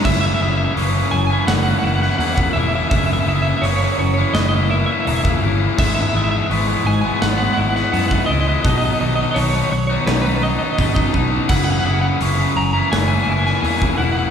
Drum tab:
CC |x---------------|----------------|x---------------|----------------|
HH |----o---o---o---|o---o---o---o---|----o---o---o---|o---o---o---o---|
SD |--------o--o----|--------o-------|--------o--o----|--------o-------|
BD |o------------o--|o------------o--|o------------o--|o-----------ooo-|

CC |x---------------|
HH |----o---o---o---|
SD |--------o--o----|
BD |o------------o--|